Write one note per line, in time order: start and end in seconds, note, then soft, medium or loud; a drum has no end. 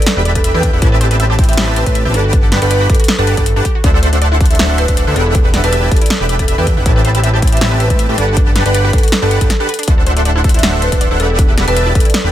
0.02 closed hi-hat medium
0.07 0.13 D4 medium
0.07 snare loud
0.07 closed hi-hat medium
0.17 0.52 E1 medium
0.17 0.52 D4 loud
0.17 0.52 G4 medium
0.17 0.23 B4 medium
0.17 0.52 B4 medium
0.17 0.52 E5 medium
0.17 0.52 B5 loud
0.25 0.30 D5 medium
0.25 closed hi-hat medium
0.35 0.47 A4 loud
0.35 0.42 B4 medium
0.35 kick medium
0.35 closed hi-hat medium
0.44 0.48 E5 loud
0.44 closed hi-hat medium
0.54 0.71 E2 loud
0.54 0.71 D4 loud
0.54 0.58 E4 loud
0.54 0.71 G4 medium
0.54 0.71 B4 medium
0.54 0.82 B4 medium
0.54 0.71 E5 medium
0.54 0.71 G5 loud
0.63 0.70 D4 medium
0.63 kick medium
0.63 closed hi-hat medium
0.73 0.80 E1 loud
0.73 0.80 D4 medium
0.73 0.81 E4 medium
0.73 0.80 G4 medium
0.73 0.80 B4 medium
0.73 0.80 E5 medium
0.73 0.80 F#5 medium
0.82 1.56 A1 medium
0.82 1.55 C4 medium
0.82 0.89 E4 medium
0.82 1.55 G4 medium
0.82 1.55 B4 medium
0.82 1.55 E5 medium
0.82 1.55 A5 medium
0.82 kick loud
0.82 closed hi-hat medium
0.92 0.98 B4 medium
1.01 1.05 C5 medium
1.01 closed hi-hat medium
1.11 1.17 B4 medium
1.11 closed hi-hat medium
1.20 1.24 E5 loud
1.20 closed hi-hat medium
1.30 1.33 G4 loud
1.39 1.46 E4 medium
1.39 kick loud
1.39 closed hi-hat soft
1.44 closed hi-hat medium
1.49 1.57 G4 medium
1.49 1.60 E5 medium
1.49 closed hi-hat medium
1.53 closed hi-hat medium
1.57 1.84 A1 medium
1.57 1.84 C4 medium
1.57 1.64 E4 medium
1.57 1.84 G4 medium
1.57 1.84 B4 medium
1.57 1.84 E5 medium
1.57 1.84 A5 loud
1.57 snare loud
1.57 closed hi-hat medium
1.68 1.74 B4 medium
1.76 1.83 B4 medium
1.76 1.81 C5 medium
1.76 closed hi-hat medium
1.86 2.07 A2 loud
1.86 2.03 C4 medium
1.86 2.03 G4 medium
1.86 2.03 B4 medium
1.86 1.92 B4 medium
1.86 2.03 E5 medium
1.86 2.03 A5 loud
1.86 kick medium
1.86 closed hi-hat medium
1.95 1.99 E5 loud
1.95 closed hi-hat medium
2.05 2.16 A1 loud
2.05 2.13 C4 medium
2.05 2.09 G4 loud
2.05 2.13 G4 medium
2.05 2.13 B4 medium
2.05 2.13 E5 medium
2.05 2.13 A5 medium
2.14 2.60 G1 loud
2.14 2.21 D4 medium
2.14 2.60 D4 medium
2.14 2.60 G4 medium
2.14 2.27 A4 medium
2.14 2.60 B4 medium
2.14 2.60 F#5 medium
2.14 2.60 A5 loud
2.14 closed hi-hat medium
2.24 2.33 F#4 medium
2.33 2.40 D4 medium
2.33 kick loud
2.33 closed hi-hat medium
2.43 2.49 A4 medium
2.52 2.56 B4 medium
2.52 snare medium
2.52 closed hi-hat medium
2.62 2.88 G1 medium
2.62 2.87 D4 medium
2.62 2.87 G4 medium
2.62 2.68 A4 medium
2.62 2.88 B4 medium
2.62 2.74 B4 loud
2.62 2.87 F#5 medium
2.62 2.87 B5 loud
2.62 closed hi-hat medium
2.71 2.75 D5 loud
2.71 closed hi-hat medium
2.81 2.84 F#4 loud
2.90 2.96 G1 loud
2.90 2.96 D4 medium
2.90 2.98 D4 medium
2.90 2.98 G4 medium
2.90 2.96 A4 medium
2.90 2.98 B4 medium
2.90 2.98 F#5 medium
2.90 2.98 B5 medium
2.90 kick loud
2.90 closed hi-hat soft
2.95 closed hi-hat medium
3.00 3.08 F#4 medium
3.00 3.05 A4 medium
3.00 closed hi-hat soft
3.04 closed hi-hat medium
3.08 3.15 D4 medium
3.08 snare loud
3.08 closed hi-hat medium
3.18 3.35 G1 medium
3.18 3.35 D4 loud
3.18 3.35 G4 medium
3.18 3.25 A4 medium
3.18 3.30 A4 medium
3.18 3.35 B4 medium
3.18 3.35 F#5 medium
3.18 3.35 A5 loud
3.27 3.31 B4 medium
3.27 closed hi-hat medium
3.37 3.54 G1 loud
3.37 3.45 D4 loud
3.37 3.45 G4 medium
3.37 3.43 A4 medium
3.37 3.45 B4 medium
3.37 3.46 D5 loud
3.37 3.45 F#5 medium
3.37 3.45 A5 loud
3.37 kick medium
3.37 closed hi-hat medium
3.46 3.53 A4 medium
3.46 closed hi-hat medium
3.56 3.62 G1 loud
3.56 3.62 D4 medium
3.56 3.64 D4 medium
3.56 3.64 G4 medium
3.56 3.64 B4 medium
3.56 3.64 F#5 medium
3.56 3.64 A5 loud
3.65 3.72 G4 loud
3.65 kick medium
3.65 closed hi-hat medium
3.75 3.81 F#4 medium
3.84 4.58 D1 loud
3.84 4.57 D4 medium
3.84 3.91 D4 medium
3.84 4.57 A4 medium
3.84 4.57 C5 medium
3.84 4.57 E5 medium
3.84 4.57 F#5 medium
3.84 kick loud
3.84 closed hi-hat medium
3.94 4.00 A4 medium
4.03 4.07 C5 medium
4.03 closed hi-hat medium
4.13 4.21 D4 medium
4.13 closed hi-hat medium
4.22 4.26 D5 loud
4.22 closed hi-hat medium
4.32 4.35 E4 loud
4.41 4.47 D4 medium
4.41 kick loud
4.41 closed hi-hat soft
4.46 closed hi-hat medium
4.51 4.59 E4 medium
4.51 4.62 E5 loud
4.51 closed hi-hat soft
4.55 closed hi-hat medium
4.59 4.86 D1 loud
4.59 4.66 D4 medium
4.59 4.86 D4 medium
4.59 4.86 A4 medium
4.59 4.86 C5 medium
4.59 4.86 E5 medium
4.59 4.86 F#5 loud
4.59 snare loud
4.59 closed hi-hat medium
4.69 4.76 A4 medium
4.78 4.85 B4 medium
4.78 4.82 C5 medium
4.78 closed hi-hat medium
4.88 5.05 D1 medium
4.88 4.97 D4 medium
4.88 5.05 D4 medium
4.88 5.05 A4 medium
4.88 4.94 B4 medium
4.88 5.05 C5 medium
4.88 5.05 E5 medium
4.88 5.05 F#5 medium
4.88 kick medium
4.88 closed hi-hat medium
4.97 5.01 D5 loud
4.97 closed hi-hat medium
5.07 5.14 D2 loud
5.07 5.15 D4 medium
5.07 5.11 E4 loud
5.07 5.15 A4 medium
5.07 5.15 C5 medium
5.07 5.15 E5 medium
5.07 5.15 F#5 medium
5.16 5.62 E1 medium
5.16 5.61 D4 medium
5.16 5.23 D4 medium
5.16 5.61 G4 medium
5.16 5.28 A4 medium
5.16 5.61 B4 medium
5.16 5.61 E5 medium
5.16 5.61 F#5 loud
5.16 closed hi-hat medium
5.26 5.34 E4 medium
5.35 5.42 D4 medium
5.35 kick loud
5.35 closed hi-hat medium
5.45 5.51 B4 medium
5.54 5.58 D5 medium
5.54 snare medium
5.54 closed hi-hat medium
5.64 5.90 E1 medium
5.64 5.89 D4 medium
5.64 5.72 D4 medium
5.64 5.89 G4 medium
5.64 5.89 B4 medium
5.64 5.75 B4 loud
5.64 5.89 E5 medium
5.64 5.89 A5 loud
5.64 closed hi-hat medium
5.73 5.77 E5 loud
5.73 closed hi-hat medium
5.83 5.86 E4 loud
5.91 5.98 E1 loud
5.91 6.00 D4 medium
5.91 5.98 D4 medium
5.91 6.00 G4 medium
5.91 6.00 A4 medium
5.91 6.00 B4 medium
5.91 6.00 E5 medium
5.91 6.00 A5 medium
5.91 kick loud
5.91 closed hi-hat soft
5.96 closed hi-hat medium
6.01 6.10 E4 medium
6.01 6.13 D5 medium
6.01 closed hi-hat soft
6.06 closed hi-hat medium
6.10 6.17 D4 medium
6.10 snare loud
6.10 closed hi-hat medium
6.20 6.56 E1 medium
6.20 6.56 D4 medium
6.20 6.56 G4 medium
6.20 6.56 B4 medium
6.20 6.26 B4 medium
6.20 6.56 E5 medium
6.20 6.56 B5 loud
6.29 6.33 D5 medium
6.29 closed hi-hat medium
6.39 6.48 D4 medium
6.39 6.51 A4 loud
6.39 kick medium
6.39 closed hi-hat medium
6.48 6.52 E5 loud
6.48 closed hi-hat medium
6.58 6.78 E2 loud
6.58 6.75 D4 loud
6.58 6.62 E4 loud
6.58 6.75 G4 medium
6.58 6.75 B4 medium
6.58 6.86 B4 medium
6.58 6.75 E5 medium
6.58 6.75 G5 loud
6.67 6.74 D4 medium
6.67 kick medium
6.67 closed hi-hat medium
6.77 6.84 E1 medium
6.77 6.84 D4 medium
6.77 6.85 E4 medium
6.77 6.84 G4 medium
6.77 6.84 B4 medium
6.77 6.84 E5 medium
6.77 6.84 F#5 loud
6.86 7.60 A1 loud
6.86 7.59 C4 medium
6.86 6.93 E4 medium
6.86 7.59 G4 medium
6.86 7.59 B4 medium
6.86 7.59 E5 medium
6.86 7.59 A5 medium
6.86 kick loud
6.86 closed hi-hat medium
6.96 7.02 B4 medium
7.05 7.09 C5 medium
7.05 closed hi-hat medium
7.15 7.23 E4 medium
7.15 closed hi-hat medium
7.23 7.28 E5 loud
7.23 closed hi-hat medium
7.34 7.37 G4 loud
7.42 7.49 E4 medium
7.42 kick loud
7.42 closed hi-hat medium
7.47 closed hi-hat medium
7.52 7.61 G4 medium
7.52 7.64 E5 loud
7.52 closed hi-hat medium
7.57 closed hi-hat medium
7.61 7.92 A1 loud
7.61 7.88 C4 medium
7.61 7.68 E4 medium
7.61 7.88 G4 medium
7.61 7.88 B4 medium
7.61 7.88 E5 medium
7.61 7.88 A5 loud
7.61 snare loud
7.61 closed hi-hat medium
7.71 7.77 B4 medium
7.80 7.87 B4 medium
7.80 7.84 C5 medium
7.80 closed hi-hat medium
7.90 8.07 A2 loud
7.90 8.07 C4 medium
7.90 7.99 E4 medium
7.90 8.07 G4 medium
7.90 7.96 B4 medium
7.90 8.07 B4 medium
7.90 8.07 E5 medium
7.90 8.07 A5 loud
7.90 kick medium
7.90 closed hi-hat medium
7.99 8.03 E5 loud
7.99 closed hi-hat medium
8.09 8.16 A2 loud
8.09 8.16 C4 medium
8.09 8.13 G4 loud
8.09 8.16 G4 medium
8.09 8.16 B4 medium
8.09 8.16 E5 medium
8.09 8.16 A5 medium
8.18 8.64 G1 medium
8.18 8.25 D4 medium
8.18 8.63 D4 loud
8.18 8.63 G4 medium
8.18 8.30 A4 medium
8.18 8.63 B4 medium
8.18 8.63 F#5 medium
8.18 8.63 A5 loud
8.18 closed hi-hat medium
8.28 8.36 F#4 medium
8.37 8.44 D4 medium
8.37 kick loud
8.37 closed hi-hat medium
8.47 8.53 A4 medium
8.56 8.60 B4 medium
8.56 snare medium
8.56 closed hi-hat medium
8.66 8.92 G1 loud
8.66 8.74 D4 medium
8.66 8.91 D4 medium
8.66 8.91 G4 medium
8.66 8.91 B4 medium
8.66 8.77 B4 loud
8.66 8.91 F#5 medium
8.66 8.91 B5 loud
8.66 closed hi-hat medium
8.74 8.79 D5 loud
8.74 closed hi-hat medium
8.85 8.88 F#4 loud
8.93 9.00 G1 loud
8.93 9.00 D4 medium
8.93 9.02 D4 medium
8.93 9.02 G4 medium
8.93 9.00 A4 loud
8.93 9.02 B4 medium
8.93 9.02 F#5 medium
8.93 9.02 B5 medium
8.93 kick loud
8.93 closed hi-hat medium
8.98 closed hi-hat medium
9.03 9.12 F#4 medium
9.03 9.09 A4 medium
9.03 closed hi-hat medium
9.08 closed hi-hat medium
9.12 9.19 D4 medium
9.12 snare loud
9.12 closed hi-hat medium
9.22 9.39 G1 medium
9.22 9.39 D4 medium
9.22 9.39 G4 medium
9.22 9.28 A4 medium
9.22 9.34 A4 medium
9.22 9.39 B4 medium
9.22 9.39 F#5 medium
9.22 9.39 A5 loud
9.31 9.41 F#5 medium
9.31 closed hi-hat medium
9.41 9.50 G1 loud
9.41 9.49 D4 loud
9.41 9.49 G4 medium
9.41 9.47 A4 medium
9.41 9.45 B4 medium
9.41 9.49 B4 medium
9.41 9.49 F#5 medium
9.41 9.49 A5 loud
9.41 kick medium
9.41 closed hi-hat medium
9.50 9.54 A4 medium
9.50 9.56 A4 medium
9.50 snare medium
9.50 closed hi-hat medium
9.60 9.67 D4 medium
9.60 9.67 G4 medium
9.60 9.68 A4 medium
9.60 9.67 B4 medium
9.60 9.67 F#5 medium
9.60 9.67 A5 loud
9.69 9.78 B4 loud
9.69 closed hi-hat medium
9.74 closed hi-hat medium
9.79 9.85 D4 medium
9.79 closed hi-hat medium
9.83 closed hi-hat medium
9.88 10.61 D1 loud
9.88 10.61 D4 medium
9.88 9.95 D4 medium
9.88 10.61 A4 medium
9.88 10.61 C5 medium
9.88 10.61 E5 medium
9.88 10.61 F#5 medium
9.88 kick loud
9.88 closed hi-hat medium
9.98 10.04 A4 medium
10.07 10.11 C5 medium
10.07 closed hi-hat medium
10.17 10.25 D4 medium
10.17 closed hi-hat medium
10.25 10.30 D5 loud
10.25 closed hi-hat medium
10.36 10.39 E4 loud
10.44 10.48 A4 medium
10.44 kick loud
10.44 closed hi-hat medium
10.49 closed hi-hat medium
10.54 10.63 E4 medium
10.54 10.66 E5 medium
10.54 closed hi-hat medium
10.59 closed hi-hat medium
10.63 10.90 D1 medium
10.63 10.90 D4 medium
10.63 10.70 D4 medium
10.63 10.90 A4 medium
10.63 10.90 C5 medium
10.63 10.90 E5 medium
10.63 10.90 F#5 loud
10.63 snare loud
10.63 closed hi-hat medium
10.73 10.79 A4 medium
10.82 10.89 B4 medium
10.82 10.86 C5 medium
10.82 closed hi-hat medium
10.92 11.09 D1 loud
10.92 11.00 D4 medium
10.92 11.09 D4 medium
10.92 11.09 A4 medium
10.92 10.98 B4 medium
10.92 11.09 C5 medium
10.92 11.09 E5 medium
10.92 11.09 F#5 loud
10.92 kick medium
10.92 closed hi-hat medium
11.01 11.05 D5 loud
11.01 closed hi-hat medium
11.11 11.18 D1 loud
11.11 11.18 D4 medium
11.11 11.15 E4 loud
11.11 11.18 A4 medium
11.11 11.18 C5 medium
11.11 11.18 E5 medium
11.11 11.18 F#5 medium
11.20 11.66 E1 loud
11.20 11.65 D4 medium
11.20 11.65 G4 medium
11.20 11.24 A4 medium
11.20 11.32 A4 medium
11.20 11.65 B4 medium
11.20 11.65 E5 medium
11.20 11.65 F#5 loud
11.20 closed hi-hat medium
11.30 11.38 E4 medium
11.39 11.46 D4 medium
11.39 kick loud
11.39 closed hi-hat medium
11.49 11.55 B4 medium
11.58 11.62 D5 medium
11.58 snare medium
11.58 closed hi-hat medium
11.68 11.94 E1 medium
11.68 11.93 D4 medium
11.68 11.76 D4 medium
11.68 11.93 G4 medium
11.68 11.93 B4 medium
11.68 11.79 B4 loud
11.68 11.93 E5 medium
11.68 11.93 A5 loud
11.68 closed hi-hat medium
11.76 11.80 E5 loud
11.76 closed hi-hat medium
11.86 11.90 E4 loud
11.95 12.02 E1 loud
11.95 12.04 D4 medium
11.95 12.04 G4 medium
11.95 12.03 A4 loud
11.95 12.04 B4 medium
11.95 11.99 B4 medium
11.95 12.04 E5 medium
11.95 12.04 A5 medium
11.95 kick loud
11.95 closed hi-hat soft
12.00 closed hi-hat medium
12.05 12.14 E4 medium
12.05 12.17 D5 medium
12.05 closed hi-hat medium
12.10 closed hi-hat medium
12.14 12.21 D4 medium
12.14 snare loud
12.14 closed hi-hat medium
12.24 12.32 E1 loud
12.24 12.32 D4 medium
12.24 12.32 G4 medium
12.24 12.30 B4 medium
12.24 12.32 B4 medium
12.24 12.32 E5 medium
12.24 12.32 B5 loud